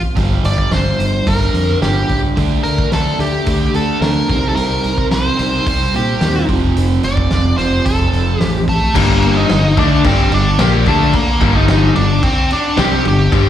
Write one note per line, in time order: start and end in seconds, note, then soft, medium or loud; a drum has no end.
0.00 0.14 F2 medium
0.00 0.14 C3 medium
0.15 0.37 G1 medium
0.15 1.24 G2 medium
0.15 0.42 G2 medium
0.15 1.25 D3 medium
0.15 0.43 D3 medium
0.15 0.44 F3 medium
0.15 1.26 G3 medium
0.15 kick medium
0.15 open hi-hat medium
0.44 0.64 G1 medium
0.44 0.69 G2 medium
0.44 0.69 D3 medium
0.44 0.70 D5 medium
0.44 open hi-hat soft
0.58 kick medium
0.71 0.92 G1 medium
0.71 0.96 G2 medium
0.71 0.96 D3 medium
0.71 1.29 C5 medium
0.71 snare medium
0.71 open hi-hat soft
0.98 1.19 G1 medium
0.98 1.25 G2 medium
0.98 1.25 D3 medium
0.98 1.25 F3 medium
0.98 open hi-hat soft
1.27 1.47 G1 medium
1.27 1.51 G2 medium
1.27 2.35 G2 medium
1.27 1.51 D3 medium
1.27 2.35 D3 medium
1.27 2.37 G3 medium
1.27 1.78 A#4 medium
1.27 kick loud
1.27 open hi-hat medium
1.54 1.74 F2 medium
1.54 1.79 G2 medium
1.54 1.79 D3 medium
1.54 open hi-hat soft
1.81 2.02 G1 medium
1.81 2.07 G2 medium
1.81 2.08 D3 medium
1.81 2.08 F3 medium
1.81 2.20 G4 medium
1.81 snare medium
1.81 open hi-hat medium
2.09 2.30 C#2 medium
2.09 2.34 G2 medium
2.09 kick medium
2.09 open hi-hat soft
2.36 2.57 D2 medium
2.36 3.44 D3 medium
2.36 2.62 D3 medium
2.36 2.63 A3 medium
2.36 3.46 A3 medium
2.36 2.63 D4 medium
2.36 3.46 D4 medium
2.36 kick medium
2.36 open hi-hat soft
2.63 2.84 D2 medium
2.63 2.89 D3 medium
2.63 2.89 A3 medium
2.63 2.89 A#4 medium
2.63 open hi-hat soft
2.78 kick medium
2.92 3.12 D2 medium
2.92 3.17 D3 medium
2.92 3.17 A3 medium
2.92 3.20 A4 medium
2.92 snare medium
2.92 open hi-hat soft
3.19 3.39 D2 medium
3.19 3.45 D3 medium
3.19 3.45 A3 medium
3.19 3.45 D4 medium
3.19 3.75 G4 medium
3.19 open hi-hat soft
3.46 3.67 D2 medium
3.46 4.27 D3 medium
3.46 3.72 D3 medium
3.46 4.28 A3 medium
3.46 3.72 A3 medium
3.46 4.29 D4 medium
3.46 kick loud
3.46 open hi-hat medium
3.74 3.94 D2 medium
3.74 3.99 D3 medium
3.74 3.99 A3 medium
3.74 4.01 A4 medium
3.74 open hi-hat soft
4.01 4.21 D2 medium
4.01 4.27 D3 medium
4.01 4.27 A3 medium
4.01 4.28 D4 medium
4.01 4.48 A#4 medium
4.01 snare medium
4.01 open hi-hat medium
4.28 4.49 C2 medium
4.28 5.37 C3 medium
4.28 4.55 C3 medium
4.28 4.55 D#3 medium
4.28 5.37 G3 medium
4.28 4.55 G3 medium
4.28 5.36 C4 loud
4.28 kick medium
4.28 open hi-hat soft
4.49 4.55 A4 medium
4.56 4.77 C2 medium
4.56 4.83 C3 medium
4.56 4.83 D#3 medium
4.56 4.83 G3 medium
4.56 5.07 A#4 medium
4.56 open hi-hat medium
4.84 5.04 C2 medium
4.84 5.09 C3 medium
4.84 5.09 D#3 medium
4.84 open hi-hat soft
4.98 kick medium
5.11 5.32 C2 medium
5.11 5.37 C3 medium
5.11 5.37 D#3 medium
5.11 5.66 C5 medium
5.11 snare medium
5.11 open hi-hat medium
5.37 5.59 C2 medium
5.37 5.65 C3 medium
5.37 6.48 C3 medium
5.37 5.65 D#3 medium
5.37 6.47 G3 medium
5.37 5.65 G3 medium
5.37 6.46 C4 medium
5.37 open hi-hat soft
5.67 5.87 C2 medium
5.67 5.92 C5 medium
5.67 kick loud
5.67 open hi-hat medium
5.94 6.14 A#2 medium
5.94 6.19 C3 medium
5.94 6.19 D#3 medium
5.94 6.46 G4 medium
5.94 open hi-hat soft
6.21 6.41 D#2 medium
6.21 6.47 C3 medium
6.21 6.48 D#3 medium
6.21 6.48 G3 medium
6.21 snare medium
6.21 open hi-hat medium
6.47 6.69 F1 medium
6.47 7.56 F2 medium
6.47 6.74 F2 medium
6.47 7.57 C3 medium
6.47 6.75 C3 medium
6.47 6.75 F3 medium
6.47 7.57 F3 medium
6.47 kick medium
6.47 open hi-hat soft
6.76 6.96 F1 medium
6.76 7.02 F2 medium
6.76 7.02 C3 medium
6.76 7.03 F3 medium
6.76 open hi-hat medium
7.03 7.24 F1 medium
7.03 7.29 F2 medium
7.03 7.29 C3 medium
7.03 7.57 D5 medium
7.03 open hi-hat soft
7.17 kick medium
7.31 7.51 F1 medium
7.31 7.56 F2 medium
7.31 7.56 C3 medium
7.31 snare medium
7.31 open hi-hat soft
7.58 7.79 F1 medium
7.58 7.84 F2 medium
7.58 8.68 F2 medium
7.58 7.84 C3 medium
7.58 8.67 C3 medium
7.58 8.66 F3 medium
7.58 7.85 F3 medium
7.58 7.83 C5 medium
7.58 open hi-hat soft
7.85 8.06 F1 medium
7.85 8.10 F2 medium
7.85 8.10 C3 medium
7.85 8.42 A4 medium
7.85 kick medium
7.85 open hi-hat medium
8.12 8.33 F1 medium
8.12 8.37 F2 medium
8.12 8.38 C3 medium
8.12 open hi-hat soft
8.40 8.80 A1 medium
8.40 8.66 F2 medium
8.40 8.67 C3 medium
8.40 8.67 F3 medium
8.40 8.64 G4 medium
8.40 snare loud
8.40 open hi-hat medium
8.68 8.93 F2 medium
8.68 8.93 C3 medium
8.68 8.94 A3 medium
8.68 kick medium
8.68 open hi-hat soft
8.94 9.46 G1 loud
8.94 9.48 G2 loud
8.94 9.49 D3 medium
8.94 9.49 G3 loud
8.94 9.38 A#3 loud
8.94 kick loud
8.94 crash loud
8.94 crash medium
9.23 crash medium
9.37 9.79 D#4 loud
9.49 9.75 G1 medium
9.49 9.72 G2 medium
9.49 9.73 D3 medium
9.49 snare loud
9.49 crash medium
9.77 10.03 D2 medium
9.77 10.04 D3 medium
9.77 10.05 A3 loud
9.77 10.05 D4 loud
9.77 10.06 D4 medium
9.77 kick loud
9.77 crash medium
10.05 10.30 G1 loud
10.05 10.31 G2 loud
10.05 10.31 D3 medium
10.05 10.32 G3 loud
10.05 10.34 C4 loud
10.05 kick loud
10.05 crash loud
10.31 10.57 G1 medium
10.31 10.54 G2 medium
10.31 10.54 D3 medium
10.31 10.61 D4 loud
10.31 crash medium
10.59 10.85 A#1 loud
10.59 10.85 A#2 medium
10.59 10.86 F3 medium
10.59 10.86 A#3 loud
10.59 10.88 G4 loud
10.59 snare loud
10.59 crash medium
10.86 11.12 D2 medium
10.86 11.13 D3 medium
10.86 11.13 A3 loud
10.86 11.14 A3 medium
10.86 11.13 D4 loud
10.86 kick loud
10.86 crash medium
11.13 11.57 A#3 loud
11.13 muted overdriven electric guitar stroke medium
11.13 muted fingered electric bass stroke soft
11.13 kick loud
11.13 crash medium
11.40 11.92 G1 loud
11.40 11.94 G2 medium
11.40 11.95 D3 loud
11.40 11.95 G3 medium
11.40 kick loud
11.40 crash medium
11.56 11.95 D#4 loud
11.68 snare loud
11.68 crash medium
11.95 12.22 G1 medium
11.95 12.18 G2 medium
11.95 12.18 D3 medium
11.95 12.21 D4 medium
11.95 crash medium
12.23 12.49 C4 medium
12.23 kick loud
12.23 crash medium
12.51 12.80 D4 loud
12.51 crash medium
12.77 13.03 C2 loud
12.77 13.04 C3 loud
12.77 13.04 G3 medium
12.77 13.05 C4 loud
12.77 13.04 G4 loud
12.77 snare loud
12.77 crash medium
13.03 13.31 G1 medium
13.03 13.26 G2 medium
13.03 13.27 D3 medium
13.03 crash medium
13.08 13.49 G4 loud
13.31 13.49 G1 loud
13.31 13.49 G2 medium
13.31 13.49 D3 medium
13.31 13.49 G3 loud
13.31 kick loud
13.31 crash medium